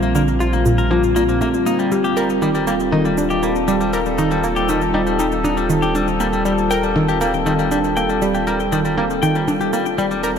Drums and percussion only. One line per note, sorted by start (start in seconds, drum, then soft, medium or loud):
0.03 cabasa soft
0.15 cabasa medium
0.28 cabasa soft
0.40 cabasa medium
0.53 cabasa soft
0.66 cabasa medium
0.78 cabasa soft
0.91 percussion blips medium
1.03 cabasa soft
1.16 cabasa medium
1.29 cabasa soft
1.41 percussion blips medium
1.41 cabasa medium
1.54 cabasa soft
1.67 cabasa medium
1.79 cabasa soft
1.92 cabasa medium
2.04 cabasa soft
2.17 cabasa medium
2.30 cabasa soft
2.42 cabasa medium
2.55 cabasa soft
2.67 cabasa loud
2.80 cabasa soft
2.92 percussion blips medium
3.05 cabasa soft
3.18 cabasa loud
3.30 cabasa soft
3.43 cabasa medium
3.55 cabasa soft
3.68 cabasa loud
3.81 cabasa soft
3.93 cabasa medium
4.06 cabasa soft
4.18 cabasa medium
4.31 cabasa soft
4.44 cabasa medium
4.56 cabasa soft
4.69 cabasa medium
4.81 cabasa soft
4.94 percussion blips medium
5.07 cabasa soft
5.19 cabasa medium
5.32 cabasa soft
5.45 percussion blips medium
5.45 cabasa medium
5.57 cabasa soft
5.70 cabasa medium
5.82 cabasa soft
5.95 cabasa medium
6.08 cabasa soft
6.20 cabasa medium
6.33 cabasa soft
6.45 cabasa medium
6.58 cabasa soft
6.71 cabasa medium
6.83 cabasa soft
6.96 percussion blips medium
7.08 cabasa soft
7.21 cabasa medium
7.34 cabasa soft
7.46 cabasa medium
7.59 cabasa soft
7.71 cabasa medium
7.84 cabasa soft
7.97 cabasa medium
8.09 cabasa soft
8.22 cabasa medium
8.34 cabasa soft
8.47 cabasa medium
8.60 cabasa soft
8.72 cabasa medium
8.85 cabasa soft
8.98 percussion blips medium
9.10 cabasa soft
9.23 cabasa medium
9.35 cabasa soft
9.48 percussion blips medium
9.48 cabasa medium
9.61 cabasa soft
9.73 cabasa medium
9.86 cabasa soft
9.98 cabasa medium
10.11 cabasa soft
10.24 cabasa medium